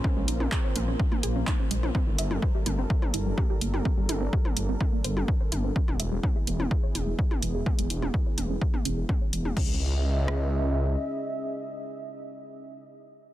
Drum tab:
CC |----------------|----------------|----------------|----------------|
HH |--x---x---x---x-|--x---x---x---x-|--x---x---x---x-|--x---x---x---x-|
CP |----x-------x---|----------------|----------------|----------------|
SD |----------------|----------------|----------------|----------------|
T2 |o--o--o--o--o--o|o--o--o--o--o--o|--o--o--o--o--o-|-o--o--o--o--o--|
BD |o---o---o---o---|o---o---o---o---|o---o---o---o---|o---o---o---o---|

CC |----------------|x---------------|----------------|
HH |-xx---x---x---x-|----------------|----------------|
CP |----------------|----------------|----------------|
SD |----------------|------r---------|----------------|
T2 |o--o--o--o--o--o|----------------|----------------|
BD |o---o---o---o---|o---------------|----------------|